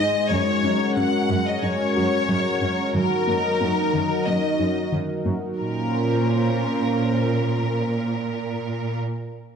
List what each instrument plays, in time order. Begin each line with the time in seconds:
Already playing: analog synth pad G#3 D#4 G#4 C5, violin section D#5
0.00 synth arpeggio sound D#4
0.30 cello section F#2, synth arpeggio sound F#3, analog synth pad C#4 F#4 A#4, violin section C#5
0.64 cello section F#2, synth arpeggio sound C#4
0.97 cello section F#2, synth arpeggio sound C#4, violin section F#5
1.30 cello section F#2, synth arpeggio sound F#3
1.47 violin section D#5
1.62 cello section F#2, synth arpeggio sound C#4, violin section C#5
1.96 cello section F#2, synth arpeggio sound F#4
2.29 cello section F#2, synth arpeggio sound F#3
2.61 cello section F#2, synth arpeggio sound C#4
2.95 cello section F#2, synth arpeggio sound D#3, analog synth pad F#3 D#4, violin section A#4
3.27 cello section F#2, synth arpeggio sound A#3
3.61 cello section F#2, synth arpeggio sound A#3
3.94 cello section F#2, synth arpeggio sound D#3
4.26 cello section F#2, synth arpeggio sound A#3, violin section D#5
4.59 cello section F#2, synth arpeggio sound D#4
4.92 cello section F#2, synth arpeggio sound D#3
5.25 cello section F#2, synth arpeggio sound A#3
5.58 cello section A#2, analog synth pad A#3 C#4 F4 C5, violin section A#4